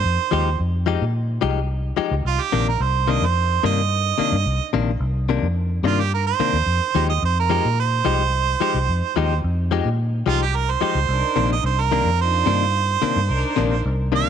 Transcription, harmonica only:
Already playing: C5
2.27 F4
2.42 G4
2.69 A#4
2.82 C5
3.11 D#5
3.25 C5
3.66 D#5
5.87 F4
6.00 G4
6.14 A#4
6.27 C5
7.10 D#5
7.25 C5
7.40 A#4
7.80 C5
10.29 F4
10.42 G4
10.56 A#4
10.71 C5
11.52 D#5
11.66 C5
11.80 A#4
12.22 C5
14.16 F5

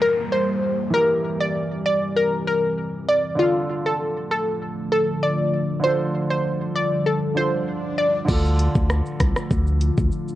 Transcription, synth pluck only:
0.02 A#4
0.32 C5
0.94 A#4
1.41 D5
1.86 D5
2.16 A#4
2.47 A#4
3.08 D5
3.39 F4
3.86 A4
4.31 A4
4.92 A4
5.23 D5
5.84 C5
6.30 C5
6.76 D5
7.06 A4
7.37 C5
7.98 D5

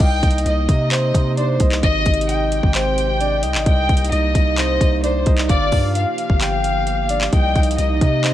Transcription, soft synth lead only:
0.00 D#5
0.91 C5
1.37 D5
1.61 D#5
1.83 D#5
2.75 C5
3.21 D5
3.43 D#5
3.66 D#5
4.58 C5
5.03 D5
5.27 D#5
5.49 F5
6.41 G5
7.10 D5
7.33 D#5
8.24 C5

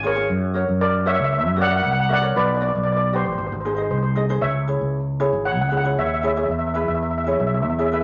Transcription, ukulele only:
0.03 F4 G#4 C#5
0.15 F4 G#4 C#5
0.54 F#4 A#4 C#5
1.06 F#4 A#4 C#5
1.56 F#4 A#4 C#5
1.70 F#4 A#4 E5
2.09 F#4 A#4 E5
2.21 F#4 A#4 C#5
2.60 F#4 B4 D5
3.13 F#4 B4 D5
3.65 D#4 G#4 C5
3.76 D#4 G#4 D#5
4.15 D#4 G#4 D#5
4.29 D#4 G#4 C5
4.68 E4 G#4 C#5
5.20 E4 G#4 C#5
5.71 E4 G#4 C#5
5.85 E4 G#4 C#5
6.23 E4 G#4 C#5
6.36 E4 G#4 C#5
6.75 E4 G#4 B4
7.26 E4 G#4 C#5
7.79 E4 G#4 C#5
7.92 E4 G#4 B4

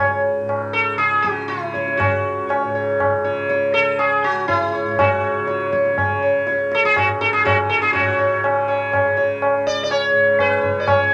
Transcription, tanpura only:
Already playing: C#2 G#2 C#3
0.41 G#2
0.97 C#3
1.53 C#3
2.09 C#2
2.65 G#2
3.19 C#3
3.73 C#3
4.30 C#2
4.84 G#2
5.39 C#3
5.93 C#3
6.48 C#2
7.03 G#2
7.56 C#3
7.94 G#2
8.49 C#3
9.05 C#3
9.57 C#2
10.11 G#2
10.65 C#3

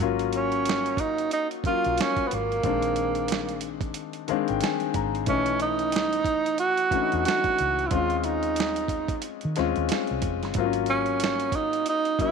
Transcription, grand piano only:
0.00 F#3 A#3 C#4 F4
1.64 F#3 A#3 C#4 F4
2.63 D#3 G#3 C4 D4
4.28 D#3 G#3 C4 D4 F5
4.49 G5
4.62 G#5
4.96 A#5
5.27 E3 A3 C#4 D#4
6.92 E3 A3 C#4 D4
7.02 D#4
7.92 G#3 C4 C#4 F4
9.56 G#3 C4 C#4 F4
10.57 F#3 A#3 C4 F4
10.65 C#4
12.19 F#3 A#3 C#4 D#4

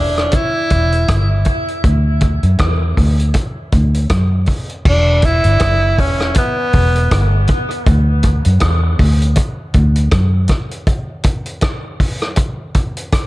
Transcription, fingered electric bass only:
Already playing: E1
0.71 E1
1.09 G1
1.84 D2
2.43 F#2
2.60 E2
2.98 D2
3.73 D2
4.10 F#2
4.86 E1
5.45 G1
5.61 F#1
5.99 E1
6.74 E1
7.12 G1
7.87 D2
8.46 F#2
8.62 E2
8.99 D2
9.75 D2
10.12 F#2

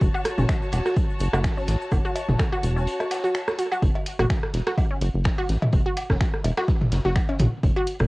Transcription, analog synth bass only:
0.01 F#1
0.38 F#1
0.73 E1
1.20 F#1
1.33 F#1
1.68 A1
1.92 F#1
2.29 F#1
2.63 E1
3.82 F#1
4.19 F#1
4.54 E1
5.01 F#1
5.14 F#1
5.49 A1
5.73 F#1
6.10 F#1
6.44 E1
6.92 F#1
7.05 F#1
7.39 A1
7.63 F#1
8.00 F#1

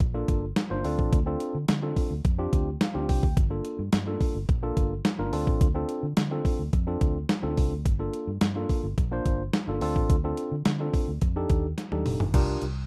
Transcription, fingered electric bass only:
0.00 A#1
0.28 G1
0.71 G1
0.85 D2
0.99 A1
1.12 D2
1.55 D3
1.69 D3
2.11 D2
2.25 F2
2.53 D2
2.95 D2
3.09 C2
3.23 D2
3.37 G1
3.79 G2
3.93 G2
4.35 G1
4.49 A#1
4.77 G1
5.19 G1
5.33 D2
5.47 A1
5.61 D2
6.03 D3
6.17 D3
6.59 D2
6.73 F2
7.01 D2
7.43 D2
7.58 C2
7.71 D2
7.86 G1
8.27 G2
8.41 G2
8.83 G1
8.98 A#1
9.26 G1
9.68 G1
9.82 D2
9.96 A1
10.10 D2
10.52 D3
10.66 D3
11.08 D2
11.22 F2
11.50 D#2
11.92 D#2
12.06 F1
12.20 G1
12.34 C2
12.62 C2

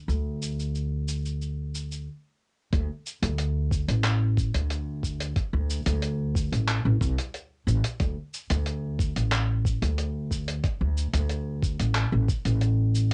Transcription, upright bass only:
0.08 D2
2.73 D2
3.22 D2
3.88 A1
4.54 D2
5.53 D2
5.86 D2
6.52 A1
6.85 A1
7.01 C2
7.67 A1
8.00 D2
8.50 D2
9.16 A1
9.82 D2
10.81 D2
11.13 D2
11.80 A1
12.12 A1
12.45 A1

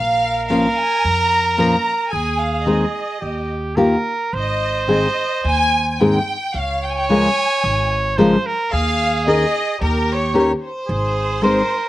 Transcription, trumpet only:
Already playing: A#4
2.12 G#4
3.21 G4
3.76 A#4
4.34 C5
6.53 C#5
8.17 C5
8.46 A#4
8.73 G#4
9.79 G4
10.87 G#4
11.42 A#4

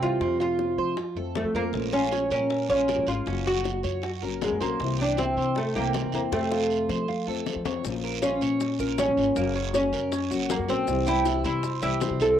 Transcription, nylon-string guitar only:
0.01 E3 G3 C4 E4
0.20 C3 F3 A3 C4 F4
0.98 muted nylon-string guitar stroke
1.17 F3 A3 C4 F4
1.36 F3 A3 C4 F4
1.55 F3 A3 C4 F4
1.73 F3 G#3 C#4 F4
2.51 muted nylon-string guitar stroke
2.70 G#3 C#4 F4
2.89 F3 G#3 F4
3.08 G#3 C#4 F4
3.26 C#3 F#3 A#3 C#4 F#4
4.03 muted nylon-string guitar stroke
4.23 F#3 A#3 C#4 F#4
4.41 F#3 A#3 C#4 F#4
4.61 F#3 A#3 C#4 F#4
4.80 C3 E3 A#3 C4 E4
5.56 muted nylon-string guitar stroke
5.75 E3 A#3 C4 E4
5.94 E3 A#3 C4
6.14 E3 A#3 C4 E4
6.32 C3 F3 A3 C4
6.36 F4
7.08 muted nylon-string guitar stroke
7.28 F3 A3 C4 F4
7.46 F3 A3 C4 F4
7.65 F3 A3 C4 F4
7.84 F3 A#3 C#4 F4
8.60 muted nylon-string guitar stroke
8.80 A#3 C#4 F4
8.99 F3 A#3 F4
9.18 A#3 C#4 F4
9.36 C#3 F#3 A#3 C#4
9.40 F#4
10.12 muted nylon-string guitar stroke
10.31 F#3 A#3 C#4 F#4
10.50 F#3 A#3 C#4 F#4
10.68 F#3 A#3 C#4 F#4
10.88 C3 E3 G3 C4 E4
11.64 muted nylon-string guitar stroke
11.82 E3 G3 C4 E4
12.01 E3 G3 C4 E4
12.21 E3 G3 C4 E4

